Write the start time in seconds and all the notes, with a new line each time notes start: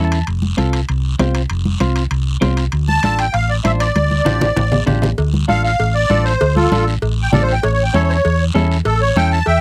Already playing: E2 C#4 E4 A4
0.05 A5
0.12 high timbale, short guiro
0.27 F1, high timbale, long guiro
0.42 high conga
0.57 C2 C4 F4 A4, high conga, high timbale, short guiro
0.73 high timbale, short guiro
0.89 C2, high timbale, long guiro
1.19 C2 C4 F4 C5, high conga, high timbale, low timbale, short guiro
1.35 high timbale, short guiro
1.50 F1, high timbale, long guiro
1.65 high conga
1.80 C2 C4 F4 C5, high conga, high timbale, short guiro
1.96 high timbale, short guiro
2.11 C2, high timbale, long guiro
2.41 C2 C4 F4 C5, high conga, high timbale, low timbale, short guiro
2.57 high timbale, short guiro
2.72 D2, high timbale, long guiro
2.88 A5, high conga
3.03 A1 D4 F4 A4, high conga, high timbale, short guiro
3.19 G5, high timbale, short guiro
3.34 A1 F5, high timbale, long guiro
3.49 D5
3.64 A1 D4 F4 C5 E5, high conga, high timbale, short guiro
3.80 D5, high timbale, short guiro
3.95 D2, high conga, high timbale, long guiro
4.11 high conga
4.25 A1 D4 F4 G4, low conga, high timbale, short guiro
4.41 low conga, high timbale, short guiro
4.56 A1, low conga, high timbale, long guiro
4.72 low conga, low timbale
4.87 A1 D4 F4 G4, low conga, low timbale, short guiro
5.02 low conga, low timbale, short guiro
5.18 D2, cowbell, long guiro
5.34 high conga
5.48 A1 D4 F4 A4 F5, high conga, short guiro
5.64 F5, short guiro
5.80 A1, cowbell, long guiro
5.95 D5
6.10 A1 D4 F4 A4, high conga, short guiro
6.24 C5, short guiro
6.41 D2, cowbell, long guiro
6.56 F4 A4, high conga
6.72 A1 D4 F4 A4, high conga, short guiro
6.87 short guiro
7.02 A1, cowbell, long guiro
7.22 G5
7.32 A1 D4 F4 A4 D5, high conga, low conga, low timbale, short guiro
7.42 C5
7.49 G5, short guiro
7.63 A1 C#5, cowbell, long guiro
7.73 C#5
7.83 G5
7.94 E2 C#4 E4 A4 C#5, high conga, short guiro
8.03 C#5
8.09 C5, short guiro
8.14 C#5
8.25 E2, cowbell, long guiro
8.55 E2 C#4 E4 A4, high conga, low timbale, short guiro
8.71 short guiro
8.85 A1 A4, cowbell, long guiro
9.02 C#5
9.16 E2 C#4 E4 A4 G5, high conga, short guiro
9.32 A5, short guiro
9.46 E2 E5 G5, cowbell, long guiro